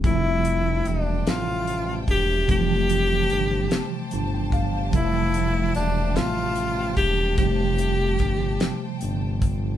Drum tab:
HH |xxxxxx|xxxxxx|xxxxxx|xxxxxx|
SD |---o--|---o--|---o--|---o--|
BD |o----o|o----o|o----o|o-o--o|